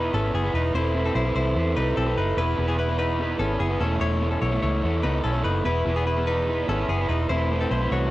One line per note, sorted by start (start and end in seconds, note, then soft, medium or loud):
0.00 0.12 B3 medium
0.00 0.12 D#4 medium
0.00 0.13 E4 medium
0.00 0.14 G#4 medium
0.00 0.12 B4 medium
0.00 0.15 B4 medium
0.13 0.31 G#1 medium
0.13 0.44 B3 medium
0.13 0.35 C#4 medium
0.13 0.45 E4 medium
0.13 0.45 G#4 medium
0.13 0.34 A4 medium
0.13 0.43 B4 medium
0.34 0.51 F#1 medium
0.34 0.55 B3 medium
0.34 0.55 G#4 medium
0.44 0.74 E4 soft
0.44 0.76 G#4 soft
0.44 0.75 B4 medium
0.54 0.71 E1 medium
0.54 0.76 D#4 medium
0.54 0.75 B4 medium
0.74 1.09 E1 medium
0.74 0.93 C4 medium
0.74 0.94 E4 medium
0.74 1.04 E4 medium
0.74 0.95 A4 medium
0.74 0.96 B4 medium
0.74 1.04 C5 medium
0.94 1.25 C4 medium
0.94 1.25 E4 medium
0.94 1.24 A4 medium
0.94 1.24 B4 medium
1.06 1.16 C4 soft
1.06 1.15 A4 medium
1.15 1.33 B1 medium
1.15 1.35 E4 medium
1.15 1.34 C5 medium
1.25 1.57 E3 medium
1.25 1.54 C4 medium
1.25 1.56 E4 medium
1.25 1.56 A4 medium
1.25 1.56 B4 medium
1.35 1.53 C2 medium
1.35 1.75 E4 medium
1.35 1.74 C5 medium
1.55 1.73 E2 medium
1.55 1.75 C4 medium
1.55 1.75 E4 medium
1.55 1.77 A4 medium
1.55 1.77 B4 medium
1.76 1.94 C2 medium
1.76 2.07 C4 soft
1.76 1.97 D#4 medium
1.76 2.07 E4 medium
1.76 2.07 A4 medium
1.76 1.97 B4 medium
1.76 2.05 B4 medium
1.97 2.14 B1 medium
1.97 2.18 C4 medium
1.97 2.17 A4 medium
2.06 2.37 E4 soft
2.06 2.38 A4 soft
2.06 2.37 B4 soft
2.17 2.35 F#1 medium
2.17 2.38 D#4 medium
2.17 2.37 B4 medium
2.37 2.55 E1 medium
2.37 2.56 B3 medium
2.37 2.57 E4 medium
2.37 2.67 E4 medium
2.37 2.58 G#4 medium
2.37 2.67 B4 medium
2.37 2.59 B4 medium
2.57 3.36 E1 medium
2.57 2.88 B3 medium
2.57 2.89 E4 medium
2.57 2.88 G#4 medium
2.57 2.88 B4 medium
2.68 2.79 B3 soft
2.68 2.78 G#4 medium
2.79 2.99 E4 medium
2.79 2.98 B4 medium
2.89 3.21 E3 medium
2.89 3.18 B3 medium
2.89 3.19 E4 medium
2.89 3.20 G#4 medium
2.89 3.20 B4 medium
2.99 3.38 D#4 medium
2.99 3.37 B4 medium
3.19 3.38 B3 medium
3.19 3.39 E4 medium
3.19 3.40 G#4 medium
3.19 3.41 B4 medium
3.39 3.57 G#1 medium
3.39 3.70 B3 medium
3.39 3.61 C#4 medium
3.39 3.71 E4 medium
3.39 3.70 G#4 medium
3.39 3.60 A4 medium
3.39 3.68 B4 medium
3.60 3.78 F#1 medium
3.60 3.81 B3 medium
3.60 3.80 G#4 medium
3.69 3.81 E4 soft
3.69 3.81 G#4 medium
3.69 3.80 B4 soft
3.80 3.98 E1 loud
3.80 4.53 E3 medium
3.80 4.22 A3 medium
3.80 4.20 B3 medium
3.80 4.01 C#4 medium
3.80 4.21 E4 medium
3.80 4.01 A4 medium
3.80 4.21 A4 medium
3.80 4.23 C#5 medium
4.01 4.36 E1 medium
4.01 4.31 E4 medium
4.01 4.30 C#5 medium
4.20 4.52 B3 medium
4.20 4.52 E4 medium
4.20 4.51 A4 medium
4.20 4.50 C#5 medium
4.31 4.42 C#4 medium
4.31 4.41 A4 medium
4.42 4.60 B1 medium
4.42 4.62 E4 medium
4.42 4.61 C#5 medium
4.51 4.84 E3 medium
4.51 4.84 A3 medium
4.51 4.81 B3 medium
4.51 4.82 E4 medium
4.51 4.83 A4 medium
4.51 4.83 C#5 medium
4.63 4.80 C#2 medium
4.63 5.02 E4 medium
4.63 5.01 C#5 medium
4.82 5.01 E2 medium
4.82 5.02 B3 medium
4.82 5.03 E4 medium
4.82 5.04 A4 medium
4.82 5.05 C#5 medium
5.03 5.22 C#2 medium
5.03 5.34 B3 medium
5.03 5.25 D#4 medium
5.03 5.34 E4 medium
5.03 5.33 A4 medium
5.03 5.23 B4 medium
5.03 5.32 C#5 medium
5.24 5.42 B1 medium
5.24 5.45 C#4 medium
5.24 5.44 A4 medium
5.33 5.63 B3 soft
5.33 5.64 E4 medium
5.33 5.65 A4 medium
5.33 5.65 C#5 medium
5.44 5.62 F#1 medium
5.44 5.66 D#4 medium
5.44 5.64 B4 medium
5.64 5.83 E1 loud
5.64 5.83 B3 medium
5.64 5.84 E4 medium
5.64 5.95 E4 medium
5.64 5.85 G#4 medium
5.64 5.95 B4 medium
5.64 5.86 B4 medium
5.85 6.64 E1 medium
5.85 6.16 B3 medium
5.85 6.16 E4 medium
5.85 6.15 G#4 medium
5.85 6.15 B4 medium
5.96 6.07 B3 medium
5.96 6.06 G#4 medium
6.07 6.27 E4 medium
6.07 6.26 B4 medium
6.16 6.48 E3 medium
6.16 6.46 B3 medium
6.16 6.47 E4 medium
6.16 6.48 G#4 medium
6.16 6.48 B4 medium
6.27 6.66 D#4 medium
6.27 6.66 B4 medium
6.47 6.67 B3 medium
6.47 6.68 E4 medium
6.47 6.69 G#4 medium
6.47 6.70 B4 medium
6.68 6.86 G#1 medium
6.68 6.99 B3 medium
6.68 6.90 C#4 medium
6.68 7.00 E4 medium
6.68 6.99 G#4 medium
6.68 6.89 A4 medium
6.68 6.97 B4 medium
6.88 7.06 F#1 medium
6.88 7.09 B3 medium
6.88 7.09 G#4 medium
6.98 7.30 E4 soft
6.98 7.31 G#4 soft
6.98 7.30 B4 medium
7.09 7.27 E1 medium
7.09 7.30 D#4 soft
7.09 7.29 B4 medium
7.29 7.65 E1 medium
7.29 7.49 A3 medium
7.29 7.50 C4 medium
7.29 7.59 E4 medium
7.29 7.51 E4 medium
7.29 7.52 B4 medium
7.29 7.59 C5 medium
7.50 7.81 A3 medium
7.50 7.81 C4 medium
7.50 7.81 E4 medium
7.50 7.80 B4 medium
7.60 7.72 C4 medium
7.60 7.71 A4 medium
7.71 7.88 B1 medium
7.71 7.92 E4 medium
7.71 7.91 C5 medium
7.81 8.11 E3 medium
7.81 8.11 A3 medium
7.81 8.11 C4 medium
7.81 8.11 E4 medium
7.81 8.11 B4 medium
7.91 8.09 C2 medium
7.91 8.11 F#4 medium
7.91 8.11 C#5 medium